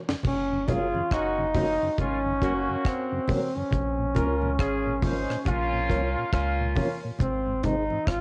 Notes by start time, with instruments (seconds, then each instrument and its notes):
0.08 tonewheel organ F#2 C#3, reed electric piano A#4 C#5, snare
0.23 sub bass F#1, kick, crash, low conga
0.28 trombone C#4
0.51 tonewheel organ F#2 C#3
0.68 sub bass F#1, tonewheel organ F#3 A#3 C#4, horn section C#4 F4 G#4, trombone F4, reed electric piano F#4 A#4 C#5, kick, closed hi-hat, low conga
0.95 tonewheel organ F#2 C#3, high conga
1.11 sub bass F#1, horn section A#3 C#4 F#4, trombone D#4, kick, cross-stick
1.38 tonewheel organ F#2 C#3
1.54 tonewheel organ F#3 A#3 C#4, horn section G#3 C4 D#4, reed electric piano F#4 A#4 C#5, kick, open hi-hat, high conga, low conga
1.82 tonewheel organ F#2 C#3
1.98 sub bass G#1, horn section A#3 C#4 F4, trombone C#4, kick, hi-hat pedal, low conga
2.26 tonewheel organ F#2 C#3
2.42 sub bass F#1, horn section C#3 A#3 F#4, tonewheel organ F#3 A#3 C#4, reed electric piano F#4 A#4 C#5, kick, closed hi-hat
2.69 tonewheel organ F#2 C#3, reed electric piano A#4 C#5
2.85 trombone C4, kick, cross-stick
3.12 tonewheel organ F#2 C#3
3.28 tonewheel organ F#3 A#3 C#4, reed electric piano F#4 A#4 C#5, kick, open hi-hat, high conga, low conga
3.56 tonewheel organ F#2 C#3, trombone C#4
3.71 sub bass A#1, kick, hi-hat pedal, low conga
3.99 tonewheel organ A#2
4.15 sub bass C#2, tonewheel organ F3 A#3 C#4, horn section C#4 F4 A#4, reed electric piano F4 A#4 C#5, kick, closed hi-hat, low conga
4.42 tonewheel organ A#2, high conga
4.59 sub bass G#1, horn section C#4 F4 G#4, kick, cross-stick
4.86 tonewheel organ A#2
5.02 tonewheel organ F3 A#3 C#4, horn section G#3 D#4 C5, reed electric piano F4 A#4 C#5, kick, open hi-hat, high conga, low conga
5.30 tonewheel organ A#2, cross-stick
5.45 sub bass A#1, horn section A#3 C#4 F4, kick, hi-hat pedal, low conga
5.73 tonewheel organ A#2
5.89 sub bass C2, tonewheel organ F3 A#3 C#4, reed electric piano F4 A#4 C#5, kick, closed hi-hat
6.17 tonewheel organ A#2
6.33 sub bass C#2, horn section A#3 C#4 F4, kick, cross-stick
6.60 tonewheel organ A#2
6.76 tonewheel organ F3 A#3 C#4, reed electric piano F4 A#4 C#5, kick, open hi-hat, high conga, low conga
7.03 tonewheel organ A#2, reed electric piano A#4 C#5
7.19 sub bass G#1, trombone C4, kick, hi-hat pedal, low conga
7.47 tonewheel organ G#2
7.63 sub bass G#1, tonewheel organ D#3 G#3 C4, reed electric piano D#4 G#4 C5, trombone D#4, kick, closed hi-hat, low conga
7.90 tonewheel organ G#2, high conga
8.07 sub bass G#1, trombone F4, kick, cross-stick